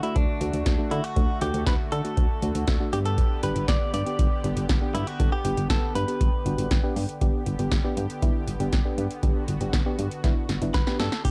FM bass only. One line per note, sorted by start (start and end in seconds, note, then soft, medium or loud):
0.16 0.25 D2 loud
0.41 0.50 D2 loud
0.53 0.63 D2 loud
0.66 0.75 D2 loud
0.91 1.01 D3 loud
1.16 1.26 D2 loud
1.42 1.51 D2 loud
1.54 1.64 D2 loud
1.67 1.76 D2 loud
1.92 2.01 D3 loud
2.17 2.27 D2 loud
2.42 2.52 D2 loud
2.55 2.65 D2 medium
2.68 2.77 D2 loud
2.93 3.21 G2 medium
3.43 3.53 G1 loud
3.56 3.65 G1 loud
3.68 3.78 G1 loud
3.94 4.03 G2 loud
4.19 4.28 G1 loud
4.44 4.54 G1 loud
4.57 4.66 G1 loud
4.69 4.79 G1 loud
4.95 5.04 G2 loud
5.20 5.29 G1 loud
5.45 5.54 G1 loud
5.58 5.67 G1 loud
5.70 5.80 G1 loud
5.95 6.05 G2 loud
6.21 6.30 G1 loud
6.46 6.55 G1 loud
6.58 6.68 G1 loud
6.71 6.81 G1 loud
6.96 7.06 G2 loud
7.22 7.31 G1 loud
7.47 7.56 G1 loud
7.59 7.69 G1 loud
7.72 7.81 G1 loud
7.97 8.07 G2 loud
8.22 8.32 G1 loud
8.47 8.57 G1 medium
8.60 8.70 G1 medium
8.73 8.82 G1 loud
8.98 9.07 G2 loud
9.23 9.33 G1 loud
9.48 9.58 G1 loud
9.61 9.70 G1 loud
9.73 9.83 G1 loud
9.99 10.08 G2 loud
10.24 10.33 G1 loud
10.49 10.59 G1 loud
10.62 10.71 G1 medium
10.74 10.84 G1 loud
11.00 11.09 G2 loud
11.25 11.31 E1 loud